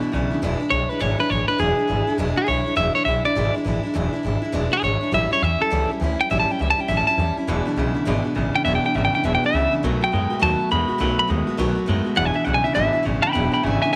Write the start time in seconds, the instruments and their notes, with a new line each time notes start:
Already playing: clean electric guitar E2 B2
0.01 steel-string acoustic guitar E3 G#3 D4 E4, muted upright bass stroke
0.12 upright bass B1, clean electric guitar E2 C#3, steel-string acoustic guitar E3 G#3 D4 E4
0.30 steel-string acoustic guitar E3 G#3 D4 E4, muted upright bass stroke
0.42 upright bass E1, steel-string acoustic guitar E2 B2 E3 G#3 D4 E4
0.60 steel-string acoustic guitar E3 G#3 D4 E4, muted upright bass stroke
0.70 upright bass B1, steel-string acoustic guitar E3 G#3 D4 E4, clean electric guitar C#5
0.89 steel-string acoustic guitar E3 G#3 D4 E4, clean electric guitar B4, muted upright bass stroke
0.99 upright bass G#1, steel-string acoustic guitar E2 B2 E3 G#3 D4 E4, clean electric guitar C#5
1.18 steel-string acoustic guitar E3 G#3 D4 E4, clean electric guitar B4
1.29 upright bass A1, steel-string acoustic guitar E3 G#3 D4 E4, clean electric guitar C#5
1.48 steel-string acoustic guitar E3 G#3 D4 E4, clean electric guitar B4, muted upright bass stroke
1.58 upright bass E1, steel-string acoustic guitar E2 B2 E3 G#3 D4 E4, clean electric guitar G#4
1.77 steel-string acoustic guitar E3 G#3 D4 E4, muted upright bass stroke
1.88 upright bass G#1, steel-string acoustic guitar E3 G#3 D4 E4
2.07 steel-string acoustic guitar E3 G#3 D4 E4, muted upright bass stroke
2.18 upright bass E1, steel-string acoustic guitar E2 B2 E3 G#3 D4 E4
2.36 steel-string acoustic guitar E3 G#3 D4 E4, clean electric guitar G#4, muted upright bass stroke
2.46 upright bass B1, steel-string acoustic guitar E3 G#3 D4 E4, clean electric guitar C#5
2.66 steel-string acoustic guitar E3 G#3 D4 E4, muted upright bass stroke
2.76 upright bass E1, steel-string acoustic guitar E2 B2 E3 G#3 D4 E4, clean electric guitar E5
2.95 steel-string acoustic guitar E3 G#3 D4 E4, clean electric guitar C#5
3.05 upright bass B1, steel-string acoustic guitar E3 G#3 D4 E4, clean electric guitar E5
3.24 steel-string acoustic guitar E3 G#3 D4 E4, clean electric guitar D5, muted upright bass stroke
3.35 upright bass G#1, steel-string acoustic guitar E2 B2 E3 G#3 D4 E4
3.54 steel-string acoustic guitar E3 G#3 D4 E4
3.65 upright bass A1, steel-string acoustic guitar E3 G#3 D4 E4
3.83 steel-string acoustic guitar E3 G#3 D4 E4, muted upright bass stroke
3.94 upright bass E1, steel-string acoustic guitar E2 B2 E3 G#3 D4 E4
4.13 steel-string acoustic guitar E3 G#3 D4 E4, muted upright bass stroke
4.23 upright bass G#1, steel-string acoustic guitar E3 G#3 D4 E4
4.42 steel-string acoustic guitar E3 G#3 D4 E4, muted upright bass stroke
4.52 upright bass E1, steel-string acoustic guitar E2 B2 E3 G#3 D4 E4
4.71 steel-string acoustic guitar E3 G#3 D4 E4, clean electric guitar G#4
4.82 upright bass G#1, steel-string acoustic guitar E3 G#3 D4 E4, clean electric guitar C#5
5.01 steel-string acoustic guitar E3 G#3 D4 E4
5.12 upright bass A1, steel-string acoustic guitar A2 E3 G3 C#4 E4, clean electric guitar E5
5.31 steel-string acoustic guitar G3 C#4 E4, clean electric guitar C#5, muted upright bass stroke
5.41 upright bass E2, steel-string acoustic guitar E3 G3 C#4 E4, clean electric guitar E5
5.60 steel-string acoustic guitar G3 C#4 E4, clean electric guitar A4
5.70 upright bass C#2, steel-string acoustic guitar A2 E3 G3 C#4 E4
5.89 steel-string acoustic guitar G3 C#4 E4, muted upright bass stroke
6.00 upright bass D2, steel-string acoustic guitar E3 G3 C#4 E4
6.19 steel-string acoustic guitar G3 C#4 E4, clean electric guitar G5, muted upright bass stroke
6.30 upright bass A1, steel-string acoustic guitar A2 E3 G3 C#4 E4, clean electric guitar E5
6.40 clean electric guitar A5
6.49 steel-string acoustic guitar G3 C#4 E4, clean electric guitar G5, muted upright bass stroke
6.59 upright bass C#2, steel-string acoustic guitar E3 G3 C#4 E4, clean electric guitar E5
6.70 clean electric guitar A5
6.78 steel-string acoustic guitar G3 C#4 E4, clean electric guitar G5, muted upright bass stroke
6.88 upright bass A1, steel-string acoustic guitar A2 E3 G3 C#4 E4, clean electric guitar E5
6.97 clean electric guitar A5
7.07 steel-string acoustic guitar G3 C#4 E4, clean electric guitar A5
7.18 upright bass E2, steel-string acoustic guitar E3 G3 C#4 E4
7.37 steel-string acoustic guitar G3 C#4 E4, muted upright bass stroke
7.47 upright bass E1, steel-string acoustic guitar E2 B2 E3 G#3 D4 E4, clean electric guitar E2 B2
7.65 steel-string acoustic guitar E3 G#3 D4 E4
7.76 upright bass B1, clean electric guitar E2 C#3, steel-string acoustic guitar E3 G#3 D4 E4
7.95 steel-string acoustic guitar E3 G#3 D4 E4, muted upright bass stroke
8.05 upright bass G#1, steel-string acoustic guitar E2 B2 E3 G#3 D4 E4, clean electric guitar E2 B2
8.24 steel-string acoustic guitar E3 G#3 D4 E4, muted upright bass stroke
8.35 upright bass A1, clean electric guitar E2 C#3, steel-string acoustic guitar E3 G#3 D4 E4
8.54 steel-string acoustic guitar E3 G#3 D4 E4, clean electric guitar G5, muted upright bass stroke
8.65 upright bass E1, clean electric guitar E2 B2 E5, steel-string acoustic guitar E2 B2 E3 G#3 D4 E4
8.75 clean electric guitar G5
8.84 steel-string acoustic guitar E3 G#3 D4 E4, clean electric guitar G5, muted upright bass stroke
8.94 upright bass G#1, clean electric guitar E2 C#3 E5, steel-string acoustic guitar E3 G#3 D4 E4
9.05 clean electric guitar G5
9.13 steel-string acoustic guitar E3 G#3 D4 E4, clean electric guitar G5, muted upright bass stroke
9.23 upright bass E1, steel-string acoustic guitar E2 B2 E3 G#3 D4 E4, clean electric guitar E2 B2 E5
9.35 clean electric guitar G5
9.42 steel-string acoustic guitar E3 G#3 D4 E4, clean electric guitar E5, muted upright bass stroke
9.53 upright bass C#2, clean electric guitar E2 C#3, steel-string acoustic guitar E3 G#3 D4 E4
9.71 steel-string acoustic guitar E3 G#3 D4 E4, muted upright bass stroke
9.83 upright bass B1, steel-string acoustic guitar B2 D#3 A3 B3 F#4, clean electric guitar B2 F#3
10.01 steel-string acoustic guitar A3 B3 F#4, clean electric guitar G5, muted upright bass stroke
10.12 upright bass F#2, clean electric guitar B2 G#3, steel-string acoustic guitar D#3 A3 B3 F#4
10.30 steel-string acoustic guitar A3 B3 F#4, muted upright bass stroke
10.39 upright bass D#2, steel-string acoustic guitar B2 D#3 A3 B3 F#4, clean electric guitar B2 F#3 A5
10.59 steel-string acoustic guitar A3 B3 F#4, muted upright bass stroke
10.69 upright bass E2, clean electric guitar B2 G#3 B5, steel-string acoustic guitar D#3 A3 B3 F#4
10.88 steel-string acoustic guitar A3 B3 F#4, muted upright bass stroke
10.98 upright bass B1, steel-string acoustic guitar B2 D#3 A3 B3 F#4, clean electric guitar B2 F#3
11.17 steel-string acoustic guitar A3 B3 F#4, clean electric guitar B5, muted upright bass stroke
11.27 upright bass D#2, clean electric guitar B2 G#3, steel-string acoustic guitar D#3 A3 B3 F#4
11.47 steel-string acoustic guitar A3 B3 F#4, muted upright bass stroke
11.57 upright bass B1, steel-string acoustic guitar B2 D#3 A3 B3 F#4, clean electric guitar B2 F#3
11.75 steel-string acoustic guitar A3 B3 F#4, muted upright bass stroke
11.86 upright bass F#2, clean electric guitar B2 G#3, steel-string acoustic guitar D#3 A3 B3 F#4
12.04 steel-string acoustic guitar A3 B3 F#4, muted upright bass stroke
12.15 upright bass E1, steel-string acoustic guitar E2 B2 E3 G#3 D4 E4, clean electric guitar E2 B2 F#5
12.25 clean electric guitar G#5
12.33 steel-string acoustic guitar E3 G#3 D4 E4, clean electric guitar E5, muted upright bass stroke
12.45 upright bass B1, clean electric guitar E2 C#3 F#5, steel-string acoustic guitar E3 G#3 D4 E4
12.54 clean electric guitar G#5
12.64 steel-string acoustic guitar E3 G#3 D4 E4, clean electric guitar E5, muted upright bass stroke
12.74 upright bass G#1, steel-string acoustic guitar E2 B2 E3 G#3 D4 E4, clean electric guitar E2 B2 E5
12.93 steel-string acoustic guitar E3 G#3 D4 E4, muted upright bass stroke
13.03 upright bass A1, clean electric guitar E2 C#3, steel-string acoustic guitar E3 G#3 D4 E4
13.22 steel-string acoustic guitar E3 G#3 D4 E4, clean electric guitar G5 B5, muted upright bass stroke
13.32 upright bass E1, steel-string acoustic guitar E2 B2 E3 G#3 D4 E4, clean electric guitar E2 B2 G5 B5
13.52 steel-string acoustic guitar E3 G#3 D4 E4, clean electric guitar G5 B5, muted upright bass stroke
13.63 upright bass G#1, clean electric guitar E2 C#3 E5 G#5, steel-string acoustic guitar E3 G#3 D4 E4
13.82 steel-string acoustic guitar E3 G#3 D4 E4, clean electric guitar E5 G#5
13.93 steel-string acoustic guitar E2